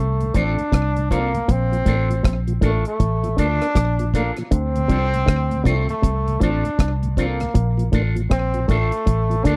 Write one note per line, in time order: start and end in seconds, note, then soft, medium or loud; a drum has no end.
0.00 0.30 C2 medium
0.00 0.19 C3 medium
0.00 0.38 A3 medium
0.21 0.26 D2 medium
0.21 0.26 A2 medium
0.21 closed hi-hat soft
0.34 0.55 A1 medium
0.34 0.48 A2 medium
0.34 0.44 F3 medium
0.34 0.56 C4 medium
0.34 0.44 C4 medium
0.34 1.11 D4 loud
0.34 0.45 D4 medium
0.34 0.56 F4 medium
0.34 0.57 A4 loud
0.34 kick medium
0.34 closed hi-hat medium
0.58 0.64 D2 medium
0.58 0.64 A2 medium
0.58 closed hi-hat soft
0.72 1.40 C2 medium
0.72 0.95 C3 medium
0.72 kick medium
0.72 cross-stick loud
0.72 closed hi-hat medium
0.96 1.02 D2 medium
0.96 1.02 A2 medium
0.96 closed hi-hat soft
1.10 1.20 F3 medium
1.10 1.53 A#3 medium
1.10 1.20 C4 medium
1.10 1.32 C4 medium
1.10 1.20 D4 medium
1.10 1.32 F4 medium
1.10 1.33 A4 medium
1.10 kick medium
1.10 closed hi-hat medium
1.34 1.40 D2 medium
1.34 1.40 A2 medium
1.34 closed hi-hat medium
1.48 1.82 A#1 medium
1.48 1.71 A#2 medium
1.48 2.39 C4 loud
1.48 kick loud
1.48 closed hi-hat loud
1.72 1.78 A#2 medium
1.72 1.78 F3 medium
1.72 closed hi-hat medium
1.86 2.20 A1 medium
1.86 2.09 A2 medium
1.86 1.96 A3 medium
1.86 1.96 A#3 medium
1.86 2.08 D4 medium
1.86 1.96 D4 medium
1.86 2.08 F4 medium
1.86 2.08 A4 medium
1.86 kick medium
1.86 closed hi-hat medium
2.10 2.15 A#2 medium
2.10 2.16 F3 medium
2.10 closed hi-hat medium
2.23 2.58 A#1 medium
2.23 2.46 A#2 medium
2.23 kick loud
2.23 cross-stick loud
2.23 closed hi-hat medium
2.47 2.53 A#2 medium
2.47 2.53 F3 medium
2.47 closed hi-hat soft
2.61 2.83 A1 medium
2.61 2.75 A2 medium
2.61 2.71 A3 medium
2.61 2.85 A3 medium
2.61 2.71 A#3 medium
2.61 2.84 D4 medium
2.61 2.72 D4 medium
2.61 2.84 F4 medium
2.61 2.84 A4 medium
2.61 kick medium
2.61 closed hi-hat medium
2.85 3.35 A3 medium
2.85 closed hi-hat medium
3.00 3.34 A1 medium
3.00 3.23 A2 medium
3.00 kick loud
3.00 closed hi-hat medium
3.24 3.29 A#2 medium
3.24 3.29 F3 medium
3.24 closed hi-hat soft
3.37 3.59 D2 medium
3.37 3.51 D3 medium
3.37 3.47 A3 medium
3.37 3.48 A#3 medium
3.37 3.59 D4 medium
3.37 4.11 D4 loud
3.37 3.48 D4 medium
3.37 3.60 F4 medium
3.37 3.60 A4 medium
3.37 kick medium
3.37 closed hi-hat medium
3.61 3.67 A#3 medium
3.61 3.68 D4 medium
3.61 cross-stick medium
3.61 closed hi-hat medium
3.75 4.30 A#1 medium
3.75 3.98 A#2 medium
3.75 kick loud
3.75 cross-stick loud
3.75 closed hi-hat medium
3.99 4.05 A#2 medium
3.99 4.05 F3 soft
3.99 closed hi-hat medium
4.14 4.23 A3 medium
4.14 4.23 A#3 medium
4.14 4.32 A#3 medium
4.14 4.36 D4 medium
4.14 4.24 D4 medium
4.14 4.36 F4 medium
4.14 4.36 A4 medium
4.14 kick medium
4.14 closed hi-hat medium
4.37 4.43 A#2 medium
4.37 4.43 F3 medium
4.37 cross-stick medium
4.37 closed hi-hat medium
4.51 4.86 D2 loud
4.51 4.74 D3 medium
4.51 5.69 C4 loud
4.51 kick loud
4.51 closed hi-hat medium
4.76 4.81 D2 medium
4.76 4.81 A2 medium
4.76 closed hi-hat medium
4.88 5.24 C2 medium
4.88 5.12 C3 medium
4.88 4.99 F3 medium
4.88 4.99 C4 medium
4.88 5.11 C4 medium
4.88 4.99 D4 medium
4.88 5.12 F4 medium
4.88 5.12 A4 medium
4.88 kick medium
4.88 closed hi-hat medium
5.14 5.19 D2 medium
5.14 5.19 A2 medium
5.14 closed hi-hat medium
5.26 5.62 D2 medium
5.26 5.49 D3 medium
5.26 kick loud
5.26 cross-stick loud
5.26 closed hi-hat medium
5.51 5.57 D2 medium
5.51 5.57 A2 medium
5.51 closed hi-hat soft
5.64 5.86 C2 medium
5.64 5.78 C3 medium
5.64 5.75 F3 medium
5.64 5.89 A3 medium
5.64 5.87 C4 medium
5.64 5.75 C4 medium
5.64 5.75 D4 medium
5.64 5.87 F4 medium
5.64 5.88 A4 medium
5.64 kick medium
5.64 closed hi-hat medium
5.88 5.95 D2 medium
5.88 5.94 A2 medium
5.88 6.43 A3 medium
5.88 closed hi-hat medium
6.02 6.37 C2 medium
6.02 6.25 C3 medium
6.02 kick loud
6.02 closed hi-hat medium
6.27 6.33 D2 medium
6.27 6.33 A2 medium
6.27 closed hi-hat soft
6.40 6.62 A1 medium
6.40 6.55 A2 medium
6.40 6.50 F3 medium
6.40 6.50 C4 medium
6.40 6.63 C4 medium
6.40 6.50 D4 medium
6.40 6.93 D4 loud
6.40 6.64 F4 medium
6.40 6.64 A4 medium
6.40 kick medium
6.40 closed hi-hat medium
6.64 6.70 D2 medium
6.64 6.70 A2 medium
6.64 closed hi-hat medium
6.79 7.47 C2 medium
6.79 7.02 C3 medium
6.79 kick loud
6.79 cross-stick loud
6.79 closed hi-hat medium
7.03 7.09 D2 soft
7.03 7.09 A2 medium
7.03 closed hi-hat soft
7.17 7.26 F3 medium
7.17 7.90 A#3 medium
7.17 7.27 C4 medium
7.17 7.39 C4 medium
7.17 7.27 D4 medium
7.17 7.40 F4 medium
7.17 7.40 A4 medium
7.17 kick medium
7.17 closed hi-hat medium
7.40 7.46 D2 medium
7.40 7.47 A2 medium
7.40 cross-stick medium
7.40 closed hi-hat medium
7.54 7.89 A#1 loud
7.54 7.77 A#2 loud
7.54 kick loud
7.54 closed hi-hat medium
7.77 7.84 A#2 medium
7.77 7.84 F3 medium
7.77 closed hi-hat medium
7.92 8.27 A1 medium
7.92 8.15 A2 medium
7.92 8.02 A3 medium
7.92 8.02 A#3 medium
7.92 8.15 D4 medium
7.92 8.03 D4 medium
7.92 8.15 F4 medium
7.92 8.16 A4 medium
7.92 kick medium
7.92 closed hi-hat medium
8.15 8.22 A#2 medium
8.15 8.22 F3 medium
8.15 closed hi-hat medium
8.30 8.65 A#1 medium
8.30 8.53 A#2 medium
8.30 8.66 C4 loud
8.30 kick loud
8.30 cross-stick loud
8.30 closed hi-hat medium
8.54 8.60 A#2 medium
8.54 8.60 F3 medium
8.54 closed hi-hat soft
8.68 8.90 A1 medium
8.68 8.82 A2 medium
8.68 8.78 A3 medium
8.68 9.46 A3 loud
8.68 8.78 A#3 medium
8.68 8.78 D4 medium
8.68 8.91 D4 medium
8.68 8.91 F4 medium
8.68 8.92 A4 loud
8.68 kick medium
8.68 closed hi-hat medium
8.92 closed hi-hat medium
9.06 9.41 A1 medium
9.06 9.29 A2 medium
9.06 kick loud
9.06 closed hi-hat medium
9.30 9.36 A#2 medium
9.30 9.36 F3 medium
9.30 closed hi-hat soft
9.44 9.56 D2 medium
9.44 9.56 D3 medium
9.44 9.54 A3 medium
9.44 9.54 A#3 medium
9.44 9.54 D4 medium
9.44 9.56 D4 loud
9.44 9.56 D4 medium
9.44 9.56 F4 medium
9.44 9.56 A4 medium
9.44 kick medium
9.44 closed hi-hat medium